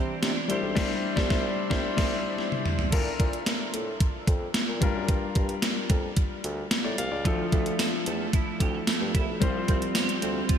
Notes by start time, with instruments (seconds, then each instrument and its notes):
Already playing: bassoon C3, clean electric guitar E3 C4 D4 G4, grand piano G3 D4 E4 C5 C6
0.22 bassoon C3, clean electric guitar D4, snare, closed hi-hat
0.48 bassoon C2, grand piano G3 D4 E4 C5, clean electric guitar G4, closed hi-hat
0.63 bassoon B1
0.75 bassoon C2, grand piano G3 D4 E4 C5, kick, snare, crash
1.16 bassoon C2, grand piano G3 D4 E4 C5, kick, snare
1.29 bassoon C2, grand piano G3 D4 E4 C5, kick, snare
1.70 bassoon C2, grand piano G3 D4 E4 C5, kick, snare
1.97 bassoon C2, grand piano G3 D4 E4 C5, kick, snare, crash
2.38 snare
2.52 high tom
2.66 mid tom
2.79 floor tom
2.91 bassoon A#2, grand piano D4 F4 A4 A#4, kick, closed hi-hat, crash
3.20 bassoon A#2, kick, closed hi-hat
3.33 closed hi-hat
3.46 snare, closed hi-hat
3.74 bassoon A2, closed hi-hat
4.00 kick, closed hi-hat
4.27 bassoon F2, kick, closed hi-hat
4.54 snare, closed hi-hat
4.68 bassoon A#2
4.80 bassoon G2, grand piano G3 D4 F4 A#4, kick, closed hi-hat
4.95 bassoon F#2
5.08 bassoon G2, kick, closed hi-hat
5.35 bassoon G2, kick, closed hi-hat
5.49 closed hi-hat
5.62 snare, closed hi-hat
5.90 bassoon F2, kick, closed hi-hat
6.17 kick, closed hi-hat
6.44 bassoon D2, closed hi-hat
6.71 snare, closed hi-hat
6.84 bassoon A2, grand piano D5
6.98 bassoon C2, grand piano F5, closed hi-hat
7.12 bassoon C#2, grand piano D5
7.24 bassoon D2, grand piano F3 D4 E4 A4, clean electric guitar F3, kick, closed hi-hat
7.52 bassoon D2, clean electric guitar A3, kick, closed hi-hat
7.66 closed hi-hat
7.79 clean electric guitar A4, snare, closed hi-hat, tambourine
8.06 bassoon E2, clean electric guitar A3, closed hi-hat
8.33 clean electric guitar E4, kick, closed hi-hat
8.60 bassoon D2, clean electric guitar G4, kick, closed hi-hat
8.74 clean electric guitar A4
8.87 clean electric guitar A3, snare, closed hi-hat, tambourine
9.01 bassoon G2
9.15 bassoon C2, clean electric guitar E4, kick, closed hi-hat
9.28 bassoon B1
9.40 bassoon C2, clean electric guitar F3, grand piano G3 C4 E4 C5, kick, closed hi-hat
9.48 grand piano F4
9.68 bassoon C2, clean electric guitar C4, kick, closed hi-hat
9.82 closed hi-hat
9.95 clean electric guitar G4, snare, closed hi-hat, tambourine
10.09 closed hi-hat
10.22 bassoon D2, clean electric guitar C4, closed hi-hat
10.49 clean electric guitar F4, kick, closed hi-hat